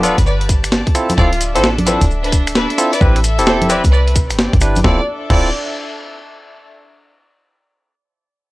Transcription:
Already playing: D1 G4 D5
0.00 B3 D4 F4 A4 B4 D5 A5, closed hi-hat
0.04 maracas
0.18 G1, kick, closed hi-hat, maracas
0.26 B4 D5, maracas
0.41 closed hi-hat
0.49 kick, closed hi-hat, maracas
0.64 finger snap, closed hi-hat, maracas
0.72 snare, maracas
0.87 kick, closed hi-hat
0.95 C4 D4 E4 F4 A4, finger snap, closed hi-hat, maracas
1.07 E5, closed hi-hat, high conga, maracas
1.12 A4
1.18 D1 C4 E4 F4 A4 D5, kick, maracas
1.33 closed hi-hat
1.41 closed hi-hat, maracas
1.55 A1 C4 E4 F4 A4 C5, closed hi-hat, maracas
1.63 snare, maracas
1.78 closed hi-hat, high conga
1.86 C4 D4 E4 F4 A4 B4, closed hi-hat, maracas
2.01 D1, kick, closed hi-hat, maracas
2.11 maracas
2.24 D4 B4, closed hi-hat
2.32 kick, closed hi-hat, maracas
2.47 finger snap, closed hi-hat, maracas
2.55 D4 B4, snare, maracas
2.70 closed hi-hat
2.78 C4 E4 F4 A4, finger snap, closed hi-hat, maracas
2.93 B4 D5, closed hi-hat, maracas
3.01 A1 C4 E4 G4 B4, kick, maracas
3.16 finger snap, closed hi-hat
3.24 closed hi-hat, maracas
3.39 E1 C4 E4 G4 A4, closed hi-hat, maracas
3.44 A4 C5 B5, snare, maracas
3.62 closed hi-hat, high conga
3.70 C4 E4 G4 B4 D5, closed hi-hat, maracas
3.84 C2, kick, closed hi-hat, maracas
3.93 C4 B4 D5, maracas
4.08 closed hi-hat
4.16 kick, closed hi-hat, maracas
4.27 G1 G4, finger snap, closed hi-hat, maracas
4.35 D5, snare, maracas
4.53 G1, kick, closed hi-hat
4.61 D4 E4 G4 B4, finger snap, closed hi-hat, maracas
4.76 closed hi-hat, high conga, maracas
4.84 D1 C4 D4 E4 F4 A4 D5, kick, snare
4.93 A4
5.01 E5
5.30 D1 C4 E4 F4 A4 D5, kick, crash

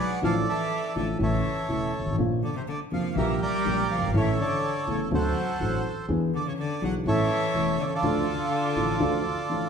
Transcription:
Already playing: G#4 B4 D5
0.00 F#3 F#5
0.22 A1 A2 D3 F3 A3 F4 A4 D5 F5
0.48 E3 A4 E5
0.95 A1 A2 D3 F3 A3 F4 D5
1.19 A1 A2 C#3 E3 A3 E4
1.23 A4 C#5 E5
1.69 E1 E2 C#3 E3 A3 E4
1.99 G1
2.06 G#1
2.12 A1
2.18 A#1 A#2 D3 F3 A#3 F4
2.43 D3 D5
2.56 C3 C5
2.68 D3 D5
2.92 F1 F2 D3 F3 A#3 F4 F5
3.16 A#1 A#2 D3 E3 G3 A#3 G4 A#4 E5
3.42 G3 A#4 D5 G5
3.65 A#1 A#2 D3 G3 A#3 G4
3.90 F3 F5
3.95 F#1
4.02 G1
4.08 G#1
4.14 A1 A2 E3 A3 C#4 A4 C#5 E5
4.38 D3 A4 D5
4.87 E1 E2 C#3 E3 A3 C#4 A4 C#5
5.11 D2 D3 F#3 C4 D4 A4 C5 F#5
5.60 A1 A2 F#3 C4 D4 A4
6.08 E2 E3 B3 D4 G#4
6.34 D3 D5
6.46 C#3 C#5
6.58 D3 D5
6.82 B1 B2 E3 F#3 B3 D4 G#4 F#5
7.06 A1 A2 E3 A3 C#4 A4 C#5 E5
7.54 E1 E2 E3 A3 C#4 A4
7.79 D3 D5
7.86 C#3 C#5
7.93 D3 F4 A4 D5
8.03 D2 D3 F3 A3 D4 A4
8.76 A1 A2 F3 A3 D4 A4
9.00 D2 D3 F3 A3 D4 A4
9.49 A1 A2 F3 A3 D4 A4

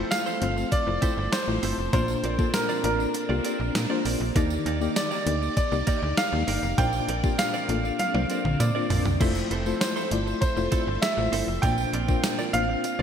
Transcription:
Already playing: F3 A3 C4 E4 F4 A4 C5
0.11 F5, muted clean electric guitar stroke, snare, closed hi-hat, tambourine
0.26 C4 E4 A4 C5, tambourine
0.41 G1 A3 C4 F4 C5, muted clean electric guitar stroke, closed hi-hat
0.57 muted clean electric guitar stroke, tambourine
0.71 D5, muted clean electric guitar stroke, kick, closed hi-hat, tambourine
0.87 F1 A3 E4 F4 C5, muted clean electric guitar stroke
1.02 C4 E4 A4 C5, kick, closed hi-hat, tambourine
1.17 G1, muted clean electric guitar stroke
1.32 C5, muted clean electric guitar stroke, snare, closed hi-hat, tambourine
1.47 A1 A3 E4 F4 C5, muted clean electric guitar stroke
1.63 G1 C4 E4 A4 C5, open hi-hat, tambourine
1.78 F1, muted clean electric guitar stroke
1.93 A#1 A#2 A#3 C4 D4 F4 A#4 C5 D5, kick, closed hi-hat, tambourine
2.08 tambourine
2.23 A#1 C4 F4 A#4 D5, closed hi-hat
2.38 A#3 C4 D4 F4 A4 A#4 D5, kick, tambourine
2.54 A#4, snare, closed hi-hat, tambourine
2.69 C4 F4 A#4 D5, tambourine
2.84 A1 A#3 D4 F4 A#4 D5, muted clean electric guitar stroke, closed hi-hat
2.99 muted clean electric guitar stroke, tambourine
3.14 muted clean electric guitar stroke, closed hi-hat, tambourine
3.29 C2 A#3 C4 D4 F4 G4 A#4 D5
3.44 C4 F4 A#4 D5, closed hi-hat, tambourine
3.60 A#1, muted clean electric guitar stroke
3.75 A#2, muted clean electric guitar stroke, snare, closed hi-hat, tambourine
3.90 A#3 C4 D4 F4 A#4 C5 D5
4.05 A#1 C4 F4 A#4 D5, open hi-hat, tambourine
4.20 A#1, muted clean electric guitar stroke
4.35 D#2 D#3 A#3 D#4 G4 D5, kick, closed hi-hat, tambourine
4.50 tambourine
4.66 D#2 A#3 D#4 G4 D5, closed hi-hat
4.81 A#3 D#4 G4 D5, tambourine
4.96 D5, snare, closed hi-hat, tambourine
5.11 A#3 D#4 G4 D5, tambourine
5.26 D2 A#3 D#4 G4 D5, muted clean electric guitar stroke, closed hi-hat
5.41 muted clean electric guitar stroke, tambourine
5.56 D5, muted clean electric guitar stroke, kick, closed hi-hat, tambourine
5.72 C2 A#3 D#4 G4 D5, muted clean electric guitar stroke, tambourine
5.87 A#3 D#4 G4 D5, kick, closed hi-hat, tambourine
6.02 D2, muted clean electric guitar stroke
6.17 F5, muted clean electric guitar stroke, snare, closed hi-hat, tambourine
6.32 D#2 A#3 D#4 G4 D5, muted clean electric guitar stroke
6.47 G1 A#3 D#4 G4 D5, open hi-hat, tambourine
6.63 F1, muted clean electric guitar stroke, tambourine
6.78 A#1 A#2 A#3 C4 D4 F4 A#4 C5 D5 G5, kick, closed hi-hat, tambourine
6.93 tambourine
7.08 A#1 C4 F4 A#4 D5, closed hi-hat
7.23 A#3 C4 D4 F4 G4 A#4 D5, kick, tambourine
7.38 F5, muted clean electric guitar stroke, snare, closed hi-hat, tambourine
7.54 C4 F4 A#4 D5, tambourine
7.68 A1 A#3 D4 F4 A4, muted clean electric guitar stroke, closed hi-hat
7.84 muted clean electric guitar stroke, tambourine
7.99 F5, muted clean electric guitar stroke, closed hi-hat, high tom, tambourine
8.14 C2 A#3 C4 D4 F4 A#4 C5 D5, high tom
8.29 C4 F4 A#4 D5, closed hi-hat, tambourine
8.45 A#1, muted clean electric guitar stroke, mid tom
8.60 A#2 D5, muted clean electric guitar stroke, closed hi-hat, mid tom, tambourine
8.75 A#3 C4 D4 F4 A#4 D5
8.90 A#1 C4 F4 A#4 D5, floor tom, open hi-hat, tambourine
9.05 C2, muted clean electric guitar stroke, floor tom, tambourine
9.20 F1 F3 A3 C4 E4 F4 A4 C5 E5, kick, crash, tambourine
9.35 tambourine
9.50 F1 C4 E4 A4 C5, closed hi-hat
9.66 A3 C4 E4 F4 A4 C5, tambourine
9.81 C5, snare, closed hi-hat, tambourine
9.96 C4 E4 A4 C5, tambourine
10.11 G1 A3 E4 F4 D5, muted clean electric guitar stroke, closed hi-hat
10.26 muted clean electric guitar stroke, tambourine
10.41 C5, muted clean electric guitar stroke, kick, closed hi-hat, tambourine
10.57 F1 A3 E4 F4 C5, muted clean electric guitar stroke, tambourine
10.71 C4 E4 A4 C5, kick, closed hi-hat, tambourine
10.87 G1, muted clean electric guitar stroke
11.02 E5, muted clean electric guitar stroke, snare, closed hi-hat, tambourine
11.17 A1 A3 E4 F4 C5, muted clean electric guitar stroke
11.32 G1 C4 E4 A4 C5, open hi-hat, tambourine
11.48 F1, muted clean electric guitar stroke
11.62 A#1 A#2 A#3 C4 D4 F4 A#4 C5 D5 G5, kick, closed hi-hat, tambourine
11.78 tambourine
11.93 A#1 C4 F4 A#4 D5, closed hi-hat
12.08 A#3 C4 D4 F4 A#4 C5 D5, kick, tambourine
12.23 muted clean electric guitar stroke, snare, closed hi-hat, tambourine
12.39 C4 F4 A#4 D5, tambourine
12.53 A1 A#3 D4 F4 C5 F5, muted clean electric guitar stroke, closed hi-hat
12.69 muted clean electric guitar stroke
12.84 muted clean electric guitar stroke, closed hi-hat, tambourine
12.99 C2 A#3 D4 F4 D5

